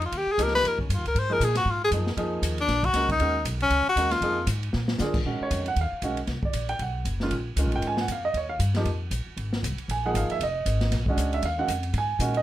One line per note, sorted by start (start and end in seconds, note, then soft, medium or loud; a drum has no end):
0.00 0.11 F2 medium
0.00 ride soft
0.05 0.19 F4 medium
0.12 0.26 D#2 medium
0.12 kick soft
0.12 ride medium
0.17 0.33 G4 medium
0.27 muted upright bass stroke soft
0.32 0.44 G#4 medium
0.38 0.63 C#2 medium
0.38 0.76 F3 medium
0.38 0.76 A#3 medium
0.38 0.76 D#4 medium
0.38 0.76 G4 medium
0.38 kick soft
0.38 hi-hat pedal medium
0.38 ride medium
0.43 0.54 A#4 medium
0.47 snare soft
0.55 0.69 B4 loud
0.55 snare soft
0.63 0.88 F2 medium
0.63 kick soft
0.63 ride medium
0.67 0.80 A#4 loud
0.79 0.95 C#4 soft
0.79 kick soft
0.89 0.97 G2 medium
0.89 kick soft
0.89 hi-hat pedal medium
0.89 ride medium
0.94 1.05 D#2 soft
0.94 1.07 F4 medium
1.05 1.14 C#2 medium
1.05 1.20 A#4 medium
1.05 ride soft
1.15 1.39 G#2 medium
1.15 1.34 C5 loud
1.15 kick soft
1.15 ride medium
1.30 1.40 F3 medium
1.30 1.40 A#3 medium
1.30 1.40 D#4 medium
1.30 1.40 G#4 medium
1.30 1.46 A#4 loud
1.40 1.65 A#2 loud
1.40 kick soft
1.40 hi-hat pedal medium
1.40 ride medium
1.44 1.56 G#4 medium
1.55 1.72 F#4 loud
1.55 snare soft
1.55 ride medium
1.65 1.91 G#2 medium
1.65 kick soft
1.70 1.83 F4 medium
1.84 1.90 G#4 loud
1.91 2.16 F#2 medium
1.91 2.06 F3 medium
1.91 2.06 A#3 soft
1.91 2.06 D#4 medium
1.91 2.07 G#4 medium
1.91 kick soft
1.91 hi-hat pedal medium
1.91 ride medium
2.07 snare soft
2.17 2.41 F2 medium
2.17 2.55 F3 medium
2.17 2.56 A#3 medium
2.17 2.55 D#4 medium
2.17 2.56 G#4 medium
2.17 kick soft
2.17 ride medium
2.42 2.68 D#2 medium
2.42 kick soft
2.42 hi-hat pedal medium
2.42 ride medium
2.58 2.87 D4 loud
2.58 ride soft
2.68 2.93 A#1 medium
2.68 kick soft
2.68 snare soft
2.68 ride medium
2.83 3.10 F#4 loud
2.83 kick medium
2.83 ride soft
2.93 3.19 C#2 medium
2.93 3.09 G#3 medium
2.93 3.09 C#4 medium
2.93 3.09 F#4 medium
2.93 3.09 A#4 medium
2.93 kick soft
2.93 snare soft
2.93 hi-hat pedal medium
2.93 ride medium
3.09 3.45 D#4 medium
3.09 kick medium
3.09 ride soft
3.19 3.44 D#2 medium
3.19 3.34 G#3 medium
3.19 3.34 C#4 medium
3.19 3.34 F#4 soft
3.19 3.34 A#4 medium
3.19 kick soft
3.19 ride medium
3.45 3.69 B1 loud
3.45 kick soft
3.45 hi-hat pedal medium
3.45 ride medium
3.60 3.86 C#4 loud
3.60 ride soft
3.70 3.85 C#2 medium
3.70 kick soft
3.70 ride medium
3.87 4.13 F#4 loud
3.87 muted upright bass stroke soft
3.96 4.20 D#2 medium
3.96 4.11 G#3 medium
3.96 4.11 C#4 medium
3.96 4.11 F#4 medium
3.96 4.11 A#4 medium
3.96 kick soft
3.96 hi-hat pedal medium
3.96 ride medium
4.11 4.49 F4 medium
4.11 snare soft
4.11 ride soft
4.21 4.46 F2 medium
4.21 4.36 F3 medium
4.21 4.37 A#3 medium
4.21 4.37 D#4 medium
4.21 4.37 G#4 medium
4.21 kick soft
4.21 ride medium
4.47 4.73 G#2 loud
4.47 kick soft
4.47 hi-hat pedal medium
4.47 ride medium
4.63 ride soft
4.73 4.99 A#2 medium
4.73 snare medium
4.88 snare medium
4.99 5.24 D3 medium
4.99 5.14 A#3 medium
4.99 5.14 D4 medium
4.99 5.14 F4 medium
4.99 5.14 G#4 medium
4.99 snare medium
4.99 hi-hat pedal medium
5.14 kick medium
5.14 crash medium
5.25 5.40 A#2 medium
5.25 5.64 D#3 soft
5.25 5.64 G#3 soft
5.25 5.64 C#4 medium
5.25 5.64 F#4 medium
5.25 kick soft
5.41 5.66 C#5 medium
5.41 muted upright bass stroke soft
5.51 5.75 F2 medium
5.51 kick soft
5.51 hi-hat pedal soft
5.51 ride medium
5.66 5.78 F#5 loud
5.66 ride soft
5.76 5.91 D#2 medium
5.76 kick soft
5.76 ride medium
5.81 6.04 F5 medium
5.92 muted upright bass stroke soft
6.02 6.27 B1 medium
6.02 6.17 D#3 medium
6.02 6.17 G#3 medium
6.02 6.17 C#4 medium
6.02 6.17 F#4 medium
6.02 kick soft
6.02 hi-hat pedal soft
6.02 ride medium
6.17 ride soft
6.27 6.42 C2 medium
6.27 kick soft
6.27 snare soft
6.27 ride soft
6.43 6.69 D5 medium
6.43 muted upright bass stroke soft
6.43 kick medium
6.53 6.79 A#1 medium
6.53 kick soft
6.53 hi-hat pedal medium
6.53 ride medium
6.69 6.80 G5 loud
6.69 ride soft
6.79 7.04 B1 medium
6.79 7.05 F#5 medium
6.79 kick soft
6.79 ride medium
7.05 7.30 F#1 medium
7.05 kick soft
7.05 hi-hat pedal medium
7.05 ride medium
7.20 7.32 D#3 medium
7.20 7.32 G#3 medium
7.20 7.32 C#4 medium
7.20 7.32 F4 medium
7.20 snare soft
7.30 7.56 A#1 medium
7.30 kick soft
7.30 ride medium
7.56 7.65 C#2 medium
7.56 7.96 D#3 medium
7.56 7.96 G#3 medium
7.56 7.96 C#4 medium
7.56 7.97 F4 medium
7.56 kick soft
7.56 hi-hat pedal medium
7.56 ride medium
7.65 7.74 A#1 medium
7.72 7.81 G#1 medium
7.72 7.85 G5 medium
7.72 ride soft
7.82 8.07 G#2 medium
7.82 kick soft
7.82 ride medium
7.87 8.00 G#5 medium
7.97 8.10 F#5 medium
7.97 snare medium
8.08 8.33 F2 medium
8.08 kick soft
8.08 hi-hat pedal soft
8.08 ride medium
8.12 8.25 F5 medium
8.25 8.35 D#5 medium
8.34 8.59 D#2 medium
8.34 8.51 C#5 medium
8.34 kick soft
8.34 ride medium
8.49 8.56 F5 medium
8.59 8.85 G2 medium
8.59 kick soft
8.59 hi-hat pedal medium
8.59 ride medium
8.74 8.86 F3 medium
8.74 8.86 A#3 medium
8.74 8.86 D#4 medium
8.74 8.86 G4 medium
8.74 snare soft
8.74 ride soft
8.85 9.10 F2 medium
8.85 kick soft
8.85 ride medium
9.11 9.25 A#1 medium
9.11 kick soft
9.11 hi-hat pedal medium
9.11 ride medium
9.26 muted upright bass stroke soft
9.37 9.62 G#1 medium
9.37 kick soft
9.37 ride medium
9.53 snare medium
9.63 9.76 C2 loud
9.63 kick soft
9.63 hi-hat pedal soft
9.63 ride medium
9.77 muted upright bass stroke soft
9.77 ride soft
9.88 10.13 A#1 medium
9.88 10.05 G#5 medium
9.88 kick soft
9.88 ride medium
10.06 10.40 F3 medium
10.06 10.40 A#3 medium
10.06 10.40 D#4 medium
10.06 10.40 G#4 medium
10.06 10.16 F#5 medium
10.14 10.28 G#1 medium
10.14 10.31 F5 medium
10.14 kick soft
10.14 hi-hat pedal medium
10.14 ride medium
10.30 10.41 E5 medium
10.30 muted upright bass stroke soft
10.30 ride soft
10.39 10.65 F1 medium
10.39 10.90 D#5 medium
10.39 kick soft
10.39 ride medium
10.66 10.91 G#1 loud
10.66 kick soft
10.66 hi-hat pedal medium
10.66 ride medium
10.81 snare soft
10.81 ride soft
10.91 11.16 A#1 medium
10.91 kick soft
10.91 snare soft
10.91 ride medium
11.06 11.42 G#3 medium
11.06 11.43 C#4 medium
11.06 11.43 D4 medium
11.06 11.43 F#4 medium
11.06 kick medium
11.17 11.42 C#2 medium
11.17 kick soft
11.17 hi-hat pedal medium
11.17 ride medium
11.33 11.44 E5 medium
11.33 ride soft
11.42 11.67 D#2 medium
11.42 11.59 F5 medium
11.42 kick soft
11.42 ride medium
11.58 11.68 D#3 medium
11.58 11.68 G#3 medium
11.58 11.68 C#4 medium
11.58 11.69 F#4 medium
11.58 11.93 F#5 medium
11.68 11.93 F2 medium
11.68 kick soft
11.68 hi-hat pedal medium
11.68 ride medium
11.83 ride soft
11.93 12.18 G#2 medium
11.93 kick soft
11.93 ride medium
11.98 12.35 G#5 loud
12.19 12.43 A#2 medium
12.19 12.34 D#3 medium
12.19 12.34 G#3 medium
12.19 12.35 C#4 medium
12.19 12.35 F#4 medium
12.19 kick soft
12.19 hi-hat pedal medium
12.19 ride medium
12.34 12.43 D#5 medium
12.34 ride soft